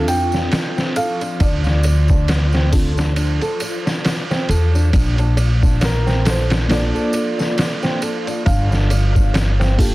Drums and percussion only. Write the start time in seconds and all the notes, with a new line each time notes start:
0.08 ride, tambourine
0.32 snare, tambourine
0.52 snare, ride, tambourine
0.78 snare, tambourine
0.96 ride, tambourine
1.21 ride, tambourine
1.40 kick, ride, tambourine
1.64 snare, tambourine
1.83 ride, tambourine
2.08 kick, tambourine
2.28 snare, ride, tambourine
2.53 snare, tambourine
2.73 kick, open hi-hat, tambourine
2.97 snare, tambourine
3.16 ride, tambourine
3.41 ride, tambourine
3.60 ride, tambourine
3.87 snare, tambourine
4.05 snare, ride, tambourine
4.31 snare, tambourine
4.49 ride, tambourine
4.75 tambourine
4.93 kick, ride, tambourine
5.18 ride, tambourine
5.37 ride, tambourine
5.63 kick, tambourine
5.81 snare, ride, tambourine
6.07 snare, tambourine
6.25 snare, ride, tambourine
6.50 snare, ride, tambourine
6.69 snare, ride, tambourine
6.96 tambourine
7.13 ride, tambourine
7.39 snare, tambourine
7.58 snare, ride, tambourine
7.83 snare, tambourine
8.02 ride, tambourine
8.27 ride, tambourine
8.46 kick, ride, tambourine
8.72 snare, tambourine
8.90 ride, tambourine
9.16 kick, tambourine
9.34 snare, ride, tambourine
9.61 snare, tambourine
9.79 kick, open hi-hat, tambourine